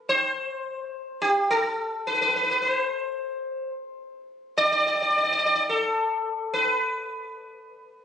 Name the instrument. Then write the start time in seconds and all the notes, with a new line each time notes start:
sitar
0.09 C5
1.22 G4
1.50 A4
2.07 B4
2.14 B4
2.22 B4
2.29 B4
2.36 B4
2.44 B4
2.51 B4
2.62 C5
4.58 D5
4.66 D5
4.72 D5
4.80 D5
4.87 D5
4.95 D5
5.02 D5
5.10 D5
5.18 D5
5.24 D5
5.32 D5
5.39 D5
5.46 D5
5.55 D5
5.69 A4
6.54 B4